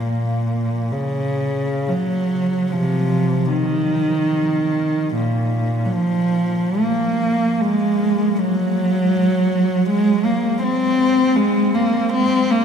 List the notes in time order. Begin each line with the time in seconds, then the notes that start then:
0.00 A#2
0.92 C#3
1.89 F#3
2.71 C3 F3
3.51 D#3
5.15 A#2
5.86 F#3
5.93 F3
6.81 A#3
7.61 G#3
8.40 F#3
9.90 G#3
10.25 A#3
10.63 C4
11.36 G#3
11.74 A#3
12.13 C4
12.51 A#3